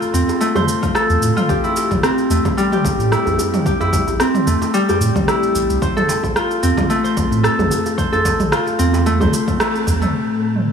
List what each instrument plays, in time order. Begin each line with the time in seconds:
Already playing: harp A3 C4 F4 A4 C5
0.02 djembe slap, cabasa
0.14 sub bass E2, harp C4, cabasa
0.29 djembe slap, djembe tone, cabasa
0.41 harp A3, cabasa
0.55 harp C5, mid tom, djembe bass, cabasa
0.68 cabasa
0.82 harp F4, kick, cabasa
0.95 harp A4, cross-stick, cabasa
1.10 sub bass E2, cabasa
1.22 sub bass A2, cabasa
1.37 harp F4, mid tom, cabasa
1.49 sub bass A1, harp G4, kick, cabasa
1.64 harp E4, djembe tone, cabasa
1.76 djembe slap, cabasa
1.91 sub bass A1, kick, mid tom, djembe tone, cabasa
2.03 harp C4, cross-stick, cabasa
2.18 cabasa
2.30 sub bass E2, harp A3, cabasa
2.45 kick, djembe slap, djembe tone, cabasa
2.57 harp G3, cabasa
2.72 harp G4, mid tom, cabasa
2.85 sub bass A1, kick, djembe slap, cabasa
2.99 sub bass A2, cabasa
3.12 harp E4, cross-stick, cabasa
3.26 sub bass A1, djembe bass, cabasa
3.39 djembe bass, cabasa
3.54 mid tom, djembe slap, djembe tone, cabasa
3.66 harp G4, kick, cabasa
3.81 harp E4, djembe tone, djembe bass, cabasa
3.93 kick, djembe slap, cabasa
4.07 sub bass A1, djembe tone, cabasa
4.20 harp C4, cross-stick, cabasa
4.34 mid tom, djembe slap, cabasa
4.47 sub bass E2, harp A3, cabasa
4.62 djembe slap, djembe tone, cabasa
4.74 harp G3, cabasa
4.89 harp G4, djembe bass, cabasa
5.01 sub bass A2, cabasa
5.16 sub bass A1, kick, mid tom, cabasa
5.28 harp E4, cross-stick, cabasa
5.43 cabasa
5.55 sub bass A1, cabasa
5.70 sub bass C2, cabasa
5.82 sub bass A1, harp C5, kick, cabasa
5.97 harp A4, mid tom, djembe tone, cabasa
6.09 djembe slap, cabasa
6.23 sub bass A1, kick, djembe tone, cabasa
6.36 harp F4, cross-stick, cabasa
6.51 cabasa
6.63 sub bass E2, harp C4, cabasa
6.77 kick, mid tom, djembe slap, djembe tone, cabasa
6.90 harp A3, cabasa
7.04 harp C5, cabasa
7.17 sub bass A1, kick, djembe slap, cabasa
7.32 sub bass A2, cabasa
7.43 harp A4, cross-stick, cabasa
7.58 sub bass A1, mid tom, djembe bass, cabasa
7.71 djembe bass, cabasa
7.86 djembe slap, djembe tone, cabasa
7.98 harp C5, kick, cabasa
8.12 harp A4, djembe tone, djembe bass, cabasa
8.25 kick, djembe slap, cabasa
8.39 sub bass A1, mid tom, djembe tone, cabasa
8.52 harp F4, cross-stick, cabasa
8.67 djembe slap, cabasa
8.79 sub bass E2, harp C4, cabasa
8.93 djembe slap, djembe tone, cabasa
9.06 harp A3, cabasa
9.20 sub bass C2, harp C5, mid tom, djembe bass, cabasa
9.33 djembe tone, cabasa
9.48 kick, cabasa
9.60 harp A3, cross-stick, cabasa
9.75 cabasa
9.87 sub bass E2, kick, cabasa
10.02 harp A3, mid tom, cabasa
10.14 ambient pad A2
10.27 ambient pad A3
10.56 mid tom, open hi-hat